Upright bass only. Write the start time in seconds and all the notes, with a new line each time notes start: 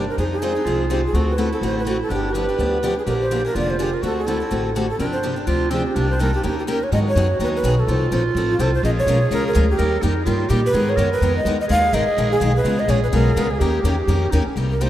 0.18 F2
0.66 C2
1.13 D2
1.61 A1
2.10 G1
2.58 D2
3.06 A#1
3.55 F1
4.03 D2
4.51 A1
4.99 G1
5.47 D2
5.95 C2
6.44 D#2
6.92 G#2
7.16 F#2
7.39 D#2
7.63 B1
7.87 C2
8.11 A#1
8.35 A1
8.59 C2
8.83 A#1
9.06 B1
9.31 C#2
9.55 D2
9.79 D#2
10.03 F2
10.27 G2
10.50 A#2
10.74 G#2
10.97 F#2
11.21 F2
11.45 E2
11.70 D#2
11.93 G#1
12.07 muted upright bass stroke
12.17 A#1
12.41 B1
12.64 C#2
12.88 A#1
13.13 B1
13.36 C#2
13.60 D#2
13.84 E2
14.07 F2
14.32 D#2
14.46 muted upright bass stroke
14.56 C2